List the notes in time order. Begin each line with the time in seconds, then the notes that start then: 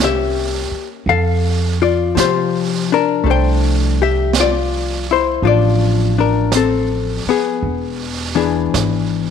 Already playing: C2 A#3 C#4
0.03 G4 E5
0.71 muted upright bass stroke
1.06 F2 A4 F5, brush sweep
1.82 F4 D5
2.15 C3 F3, brush sweep, snare, hi-hat pedal
2.19 F4 G4 C5
2.92 D4 A#4
3.24 C2 A3 D4 G4, brush sweep
3.30 C5 G5
4.02 G4 E5
4.33 brush sweep, snare, hi-hat pedal
4.40 F4 D5
5.11 E4 C5
5.42 A1 F3 D4 F4, brush sweep
5.47 D5
6.18 D4 A#4
6.52 C4, brush sweep, snare, hi-hat pedal
6.57 A4
7.25 B3, muted upright bass stroke
7.30 G#4
7.62 E1, brush sweep
8.35 E3 B3 D4 G#4
8.73 G#1, brush sweep, snare, hi-hat pedal